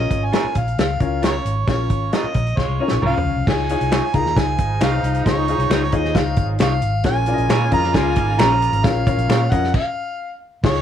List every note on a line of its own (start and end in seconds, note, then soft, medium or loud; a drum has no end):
0.00 0.57 C#4 medium
0.00 0.57 F4 medium
0.00 0.57 A#4 medium
0.00 0.57 C#5 medium
0.00 0.26 D#5 medium
0.10 0.29 G#1 medium
0.10 kick medium
0.10 closed hi-hat medium
0.25 0.60 G#5 medium
0.32 0.44 F4 medium
0.32 0.45 A#4 medium
0.32 0.45 C#5 medium
0.32 snare loud
0.32 closed hi-hat medium
0.44 muted fingered electric bass stroke soft
0.55 0.74 A#1 medium
0.55 0.79 F5 medium
0.55 kick medium
0.55 closed hi-hat medium
0.68 closed hi-hat soft
0.78 0.97 C#2 medium
0.78 1.21 F5 medium
0.78 snare loud
0.78 closed hi-hat medium
1.00 1.39 C#2 medium
1.00 1.52 C#4 medium
1.00 1.52 F4 medium
1.00 1.52 A#4 medium
1.00 1.52 C#5 medium
1.00 kick medium
1.00 closed hi-hat medium
1.22 1.34 F4 medium
1.22 1.35 A#4 medium
1.22 1.35 C#5 medium
1.22 1.66 C#5 medium
1.22 snare loud
1.22 closed hi-hat medium
1.45 1.64 G#1 medium
1.45 closed hi-hat medium
1.67 1.90 A#1 medium
1.67 2.36 C#4 medium
1.67 2.36 F4 medium
1.67 2.36 A#4 medium
1.67 2.36 C#5 medium
1.67 2.15 C#5 medium
1.67 kick loud
1.67 snare loud
1.67 closed hi-hat medium
1.90 2.09 G#1 medium
1.90 kick medium
1.90 closed hi-hat medium
2.12 2.24 F4 medium
2.12 2.25 A#4 medium
2.12 2.25 C#5 medium
2.12 2.60 D#5 medium
2.12 snare loud
2.12 closed hi-hat medium
2.23 muted fingered electric bass stroke soft
2.34 2.54 A#1 medium
2.34 kick medium
2.34 closed hi-hat medium
2.47 closed hi-hat soft
2.57 2.67 C2 medium
2.57 2.79 G#3 medium
2.57 2.79 F4 medium
2.57 3.02 C#5 medium
2.57 kick medium
2.57 snare medium
2.68 2.78 C2 medium
2.80 3.32 C#4 medium
2.80 3.01 D#4 medium
2.80 3.32 F4 medium
2.80 3.32 A#4 medium
2.80 3.32 C#5 medium
2.88 3.00 A#1 medium
2.88 snare medium
3.02 3.11 C2 medium
3.02 3.45 F3 medium
3.02 3.45 C#4 medium
3.02 3.14 F4 medium
3.02 3.14 A#4 medium
3.02 3.14 C#5 medium
3.02 mid tom medium
3.06 3.51 F5 medium
3.17 floor tom medium
3.24 3.34 C#2 medium
3.36 3.45 C2 medium
3.47 3.76 C#2 medium
3.47 3.64 D#4 medium
3.47 3.65 F4 medium
3.47 3.65 G#4 medium
3.47 3.64 C#5 medium
3.47 4.17 G#5 loud
3.47 kick loud
3.47 snare loud
3.47 crash medium
3.69 4.04 D#4 medium
3.69 4.04 F4 medium
3.69 4.04 G#4 medium
3.69 4.04 C#5 medium
3.69 closed hi-hat medium
3.81 4.00 C2 medium
3.81 closed hi-hat soft
3.91 4.03 D#4 medium
3.91 4.04 F4 medium
3.91 4.04 C#5 medium
3.91 finger snap medium
3.91 snare loud
3.91 closed hi-hat medium
4.14 4.24 C#2 medium
4.14 4.83 D#4 medium
4.14 4.83 F4 medium
4.14 4.83 G#4 medium
4.14 4.83 A#4 medium
4.14 4.40 A#5 medium
4.14 kick medium
4.14 closed hi-hat medium
4.25 4.35 D#2 medium
4.25 snare soft
4.35 4.55 C#2 medium
4.35 6.78 G#2 medium
4.35 6.78 F3 medium
4.35 6.78 D#4 medium
4.35 4.82 G#5 loud
4.35 kick medium
4.35 snare loud
4.35 closed hi-hat medium
4.58 4.77 G#1 medium
4.58 kick medium
4.58 closed hi-hat medium
4.80 5.00 C2 medium
4.80 4.93 D#4 medium
4.80 4.93 F4 medium
4.80 4.93 C#5 medium
4.80 5.24 F5 loud
4.80 finger snap medium
4.80 snare loud
4.80 closed hi-hat medium
5.03 5.22 C2 medium
5.03 closed hi-hat medium
5.14 closed hi-hat medium
5.26 5.54 C#2 loud
5.26 5.43 D#4 medium
5.26 5.43 F4 medium
5.26 5.43 G#4 medium
5.26 5.96 C#5 medium
5.26 5.43 D#5 medium
5.26 kick loud
5.26 snare loud
5.26 closed hi-hat medium
5.48 5.83 D#4 medium
5.48 5.83 F4 medium
5.48 5.83 G#4 medium
5.48 5.83 C#5 medium
5.48 closed hi-hat medium
5.58 5.68 C2 medium
5.58 closed hi-hat medium
5.70 5.89 C#2 loud
5.70 5.82 D#4 medium
5.70 5.82 F4 medium
5.70 5.83 C#5 medium
5.70 finger snap medium
5.70 snare loud
5.70 closed hi-hat medium
5.92 6.12 D#2 medium
5.92 6.61 D#4 medium
5.92 6.62 F4 medium
5.92 6.61 G#4 medium
5.92 6.61 C#5 medium
5.92 6.18 D#5 medium
5.92 kick medium
5.92 closed hi-hat medium
6.04 snare soft
6.15 6.39 C#2 medium
6.15 6.49 F5 medium
6.15 kick medium
6.15 snare loud
6.15 closed hi-hat medium
6.36 6.57 G#1 medium
6.36 kick medium
6.36 closed hi-hat medium
6.59 6.79 C2 loud
6.59 6.72 D#4 medium
6.59 6.72 F4 medium
6.59 6.72 C#5 medium
6.59 7.03 F5 loud
6.59 finger snap medium
6.59 snare loud
6.59 closed hi-hat medium
6.82 7.01 G#1 medium
6.82 closed hi-hat medium
7.04 7.33 A#1 loud
7.04 9.47 C#3 medium
7.04 9.47 A#3 medium
7.04 7.22 C#4 medium
7.04 9.47 F4 loud
7.04 7.22 F4 medium
7.04 7.22 A#4 medium
7.04 7.23 C#5 medium
7.04 7.69 G#5 loud
7.04 kick loud
7.04 snare loud
7.04 closed hi-hat medium
7.26 7.62 C#4 medium
7.26 7.62 F4 medium
7.26 7.62 A#4 medium
7.26 7.33 D5 medium
7.26 closed hi-hat medium
7.33 7.65 D#5 medium
7.38 7.48 A#1 medium
7.38 closed hi-hat medium
7.49 7.68 A#2 loud
7.49 7.61 F4 medium
7.49 7.62 A#4 medium
7.49 7.62 C#5 medium
7.49 finger snap medium
7.49 snare loud
7.49 closed hi-hat medium
7.71 7.91 F2 medium
7.71 8.41 C#4 medium
7.71 8.41 F4 medium
7.71 8.41 A#4 medium
7.71 8.41 D#5 medium
7.71 7.97 A#5 loud
7.71 kick medium
7.71 closed hi-hat medium
7.84 snare soft
7.94 8.13 C#2 medium
7.94 8.17 G#3 medium
7.94 8.16 F4 medium
7.94 8.41 G#5 loud
7.94 kick medium
7.94 snare loud
7.94 closed hi-hat medium
8.16 8.36 G#1 medium
8.16 8.39 D#4 medium
8.16 kick medium
8.16 closed hi-hat medium
8.38 8.68 A#1 medium
8.38 8.83 F3 medium
8.38 8.82 C#4 medium
8.38 8.51 F4 medium
8.38 8.51 A#4 medium
8.38 8.51 C#5 loud
8.38 8.86 A#5 loud
8.38 finger snap medium
8.38 snare loud
8.38 closed hi-hat medium
8.62 closed hi-hat medium
8.72 8.84 G#1 medium
8.72 closed hi-hat medium
8.84 9.13 A#1 loud
8.84 9.01 C#4 medium
8.84 9.01 F4 medium
8.84 9.02 A#4 medium
8.84 9.02 C#5 medium
8.84 9.53 F5 loud
8.84 kick loud
8.84 snare loud
8.84 closed hi-hat medium
9.07 9.41 C#4 medium
9.07 9.41 F4 medium
9.07 9.42 A#4 medium
9.07 9.42 C#5 medium
9.07 kick loud
9.07 closed hi-hat medium
9.17 9.27 A#1 medium
9.17 closed hi-hat medium
9.28 9.48 A#2 loud
9.28 9.41 F4 medium
9.28 9.41 A#4 medium
9.28 9.42 C#5 loud
9.28 finger snap medium
9.28 snare loud
9.28 closed hi-hat medium
9.51 9.71 F2 medium
9.51 9.74 C#4 medium
9.51 9.74 F4 medium
9.51 9.74 A#4 medium
9.51 9.74 D#5 medium
9.51 9.74 F#5 medium
9.51 kick medium
9.51 closed hi-hat medium
9.64 snare soft
9.74 10.38 F5 medium
9.74 kick loud
9.74 crash medium
10.63 10.82 C#2 loud
10.63 10.82 D#4 medium
10.63 10.82 F4 medium
10.63 10.82 G#4 medium
10.63 10.82 C#5 loud
10.63 10.82 C#5 medium
10.63 kick loud
10.63 snare loud
10.63 crash loud
10.75 closed hi-hat soft